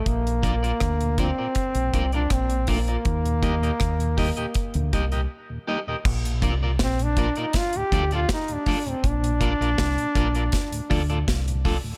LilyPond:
<<
  \new Staff \with { instrumentName = "Clean electric guitar" } { \time 4/4 \key bes \major \tempo 4 = 80 r8 <f' bes' d''>16 <f' bes' d''>16 r8 <f' bes' d''>16 <f' bes' d''>16 r8 <f' bes' d''>16 <f' bes' d''>16 r8 <f' bes' d''>16 <f' bes' d''>16 | r8 <g' bes' ees''>16 <g' bes' ees''>16 r8 <g' bes' ees''>16 <g' bes' ees''>16 r8 <g' bes' ees''>16 <g' bes' ees''>16 r8 <g' bes' ees''>16 <g' bes' ees''>16 | r8 <f' bes' d''>16 <f' bes' d''>16 r8 <f' bes' d''>16 <f' bes' d''>16 r8 <f' a' d''>16 <f' a' d''>16 r8 <f' a' d''>16 r16 | r8 <f' bes' d''>16 <f' bes' d''>16 r8 <f' bes' d''>16 <f' bes' d''>16 r8 <f' a' d''>16 <f' a' d''>16 r8 <f' a' d''>16 r16 | }
  \new Staff \with { instrumentName = "Trombone" } { \time 4/4 \key bes \major bes4. c'4~ c'16 d'16 c'8 bes8~ | bes2. r4 | r4 c'16 d'8 ees'16 f'16 g'8 f'16 ees'16 d'8 c'16 | d'2. r4 | }
  \new Staff \with { instrumentName = "Tonewheel organ" } { \clef bass \time 4/4 \key bes \major << { r8 <f bes d'>8 r8 <f bes d'>8 r8 <f bes d'>8 r8 <f bes d'>8 | r8 <g bes ees'>8 r8 <g bes ees'>8 r8 <g bes ees'>8 r8 <g bes ees'>8 | r8 <f bes d'>8 r8 <f bes d'>8 r8 <f a d'>8 r8 <f a d'>8 | r8 <f bes d'>8 r8 <f bes d'>8 r8 <f a d'>8 r8 <f a d'>8 | } \\ { r16 bes,16 r8. bes,16 r16 bes,16 r16 bes,16 r16 bes,16 r16 bes,16 r8 | r16 <ees, bes,>16 r16 <ees, bes,>16 r16 <ees, bes,>16 r16 <ees, bes,>16 r16 <ees, bes,>16 r16 <ees, bes,>16 r16 <ees, bes,>16 r16 <ees, bes,>16 | r16 bes,16 r16 bes,16 r16 bes,16 r16 bes,16 r16 <d, a,>16 r16 <d, a,>16 r16 <d, a,>16 r16 <d, a,>16 | r16 bes,16 r8. bes,16 r8. <d, a,>16 r16 <d, a,>16 r16 <d, a,>16 r16 <d, a,>16 | } >> }
  \new Staff \with { instrumentName = "Fingered electric bass" } { \clef bass \time 4/4 \key bes \major bes,,4 d,8. r8 bes,,16 c,8 bes,,4 | ees,4 ees,8. r8 d,16 c,8 r4 | bes,,8 c,8 bes,,8. r8. d,8 r4 | bes,,8. bes,,16 c,16 r16 bes,,8 r8 d,8 c,8. r16 | }
  \new DrumStaff \with { instrumentName = "Drums" } \drummode { \time 4/4 <hh bd>16 hh16 <hh bd>16 hh16 <hh bd ss>16 hh16 <hh bd>8 <hh bd>16 hh16 <hh bd>16 hh16 <hh bd ss>16 hh16 <hho bd>16 hh16 | <hh bd>16 hh16 <hh bd>16 hh16 <hh bd ss>16 hh16 <hho bd>16 hh16 <hh bd>16 hh16 <hh bd>16 hh16 r4 | <cymc bd>16 hh16 <hh bd>8 <hh bd sn>16 hh16 <hh bd>16 hh16 <hh bd sn>16 hh16 <hh bd>16 hh16 <hh bd sn>16 hh16 <hho bd>16 hh16 | <hh bd>16 hh16 <hh bd>16 hh16 <hh bd sn>16 hh16 <hh bd>16 hh16 <hh bd sn>16 hh16 <hho bd>16 hh16 <hh bd sn>16 hh16 <hho bd>8 | }
>>